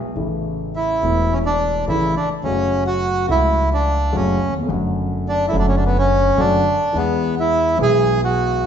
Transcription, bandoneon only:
0.76 E4
1.33 C#4
1.46 D4
1.89 E4
2.17 D4
2.44 C#4
2.87 F#4
3.31 E4
3.74 D4
4.16 C#4
5.29 D4
5.48 E4
5.59 D4
5.69 C#4
5.77 D4
5.86 B3
5.99 C#4
6.40 D4
6.96 B3
7.40 E4
7.82 G#4
8.24 F#4

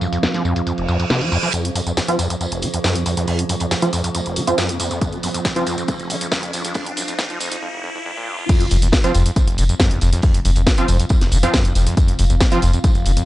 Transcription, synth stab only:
2.08 F3 C4 F4
3.82 F3 C4 F4
4.47 F3 C4 F4
5.56 F3 C4 F4
9.04 F3 C4 F4
10.78 F3 C4 F4
11.43 F3 C4 F4
12.52 F3 C4 F4

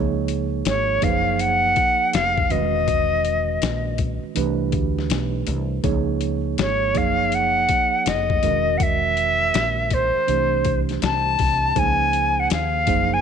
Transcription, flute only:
0.67 C#5
1.03 F5
1.36 F5
1.40 F#5
2.14 F5
2.51 D#5
6.60 C#5
6.97 F5
7.34 F#5
8.08 D#5
8.77 F#5
8.82 E5
9.93 C5
11.04 A5
11.78 G#5
12.39 F#5
12.52 F5
13.13 G#5

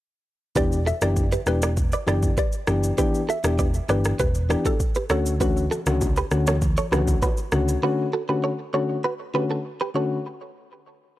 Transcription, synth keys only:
0.55 E3 B3 D4 G4
1.02 E3 B3 D4 G4
1.46 E3 B3 D4 G4
2.07 E3 B3 D4 G4
2.67 E3 B3 D4 G4
2.98 E3 B3 D4 G4
3.44 E3 B3 D4 G4
3.89 E3 B3 D4 G4
4.49 E3 B3 D4 G4
5.10 D3 A3 C#4 F#4
5.40 D3 A3 C#4 F#4
5.86 D3 A3 C#4 F#4
6.31 D3 A3 C#4 F#4
6.92 D3 A3 C#4 F#4
7.52 D3 A3 C#4 F#4
7.83 D3 A3 C#4 F#4
8.29 D3 A3 C#4 F#4
8.73 D3 A3 C#4 F#4
9.34 D3 A3 C#4 F#4
9.94 D3 A3 C#4 F#4

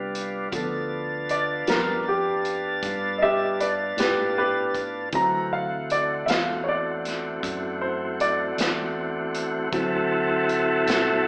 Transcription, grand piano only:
Already playing: F3 B3 A4 F5
0.52 F3 B3 A4
1.31 D5
1.67 F3 G3 B3 A#4
2.08 G4
3.18 D#5
3.22 G4 E5
3.60 B4 D5
3.99 G4 B4
4.38 G4 B4
5.12 E3 F#3 C4 A#5
5.53 F5
5.92 D5
6.26 E5 F5
6.64 C#5
6.69 D5
7.81 C5
8.21 D5
9.71 E3 F#3 C4

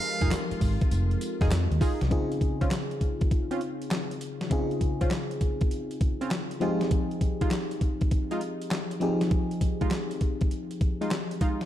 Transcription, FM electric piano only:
Already playing: C4 D#4 G4 A4 A#4
2.10 C#3 C4 D#4 F4 G#4
4.50 C#3 C4 D#4 F4 G#4
6.60 F3 C4 D#4 G4 G#4
9.00 F3 C4 D#4 G4 G#4

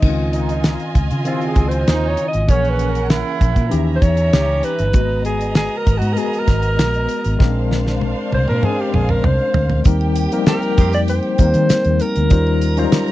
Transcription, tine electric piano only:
0.01 D#3 C4 C#4 D#4
0.10 F4
1.25 C#3 D#3 C4 E4
1.33 F4
2.48 E3 A#3 C#4 G#4
3.70 E3 C#4 D#4 G4
4.93 G#3 A#3 F#4 B4
5.00 B3
6.16 G#3 B3 F#4 G#4
6.24 A#4
7.39 G#3 C4 C#4 A#4
7.46 D4
8.62 G#3 C4 C#4 A#4
8.70 D4
9.85 G3 A#3 C4 D#4 A#4
10.32 F3 A#3 C4 D#4 A#4
10.38 G3
11.39 G3 A#3 C4 D#4 A#4
12.30 G3 C#4 D#4 F4 C5
12.77 F#3 C#4 D#4 F4 C5
12.83 G3

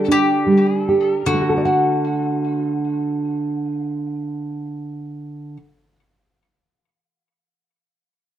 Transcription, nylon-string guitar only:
Already playing: D3 G3
0.08 D4
0.47 G3
0.89 G4
1.26 D3
1.34 A3
1.42 F#4
1.49 A4
1.57 D5
1.65 F#5

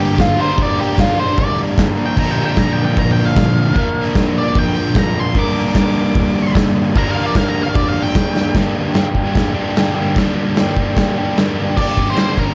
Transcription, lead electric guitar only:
0.00 G4
0.21 F4
0.41 C5
0.62 D5
0.80 G4
1.00 F4
1.19 C5
1.39 D5
2.06 G5
2.19 A#5
2.31 G5
2.45 G5
2.59 A#5
2.73 G5
2.85 G5
2.98 A#5
3.12 G5
3.25 F5
4.38 D5
4.58 G5
4.98 A#5
5.19 C6
5.39 D6
5.77 D6
6.98 A#5
7.10 F5
7.26 D5
7.36 F5
7.49 A#5
7.62 F5
7.75 D5
7.88 F5
8.02 G5
11.77 D5
12.10 C5
12.20 C5
12.39 A#4

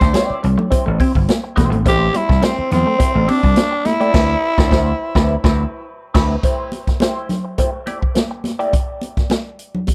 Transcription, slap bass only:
0.01 D2
0.30 muted slap bass stroke
0.44 C2
0.72 muted slap bass stroke
0.87 A1
1.16 G1
1.57 E1
1.73 G#1
1.86 A1
2.29 C2
2.59 muted slap bass stroke
2.72 E2
3.00 muted slap bass stroke
3.15 A1
3.44 C2
4.14 D2
4.58 D2
4.72 D2
5.15 D2
5.44 D2
6.15 D2

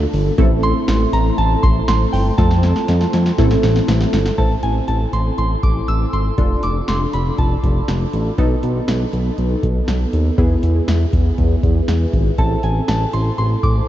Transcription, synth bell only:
0.63 C6
1.13 A#5
1.38 A5
1.63 C6
1.88 C6
2.13 G5
2.38 A5
4.38 A5
4.63 G#5
4.88 A5
5.13 C6
5.38 C6
5.63 D6
5.88 E6
6.13 C6
6.63 D6
6.88 C6
7.14 B5
7.38 A5
12.39 A5
12.63 G#5
12.88 A5
13.13 C6
13.38 C6
13.63 D6

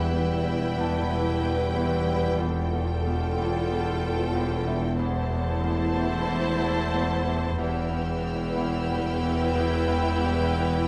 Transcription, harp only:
Already playing: E2 B3
0.12 E2
0.45 E2
0.78 E2
1.10 E2
1.42 E2
1.75 E2
2.08 E2
2.41 E2
2.73 E2
3.06 E2
3.37 E2
3.70 E2
4.02 E2
4.35 E2
4.67 E2
4.99 E2
5.31 E2
5.64 E2
5.97 E2
6.29 E2
6.61 E2
6.93 E2
7.26 E2
7.58 E2
7.91 E2
8.24 E2
8.57 E2
8.90 E2
9.22 E2
9.55 E2
9.88 E2
10.20 E2
10.54 E2

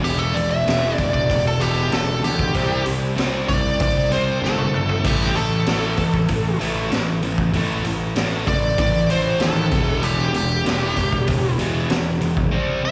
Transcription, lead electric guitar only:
0.04 G4
0.19 A4
0.34 D5
0.51 E5
0.95 D5
1.13 D5
1.47 A4
1.62 G4
1.93 A4
2.24 G4
3.48 D5
3.82 D5
4.13 C5
4.44 A4
5.06 G4
5.37 A4
8.48 D5
8.80 D5
9.11 C5
9.42 A4
10.04 G4
10.36 G4
12.85 E5

